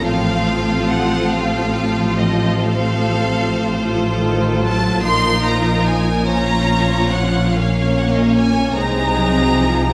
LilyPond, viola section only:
\new Staff \with { instrumentName = "Viola section" } { \clef bass \time 12/8 \key bes \minor \tempo 4. = 49 << { c'2. c'4. f'4. | ees'4. des'4. des'4. ees'4. | } \\ { f1~ f8 f8 ees8 ges8 | f4. f4. bes4. aes8 ges8 f8 | } >> }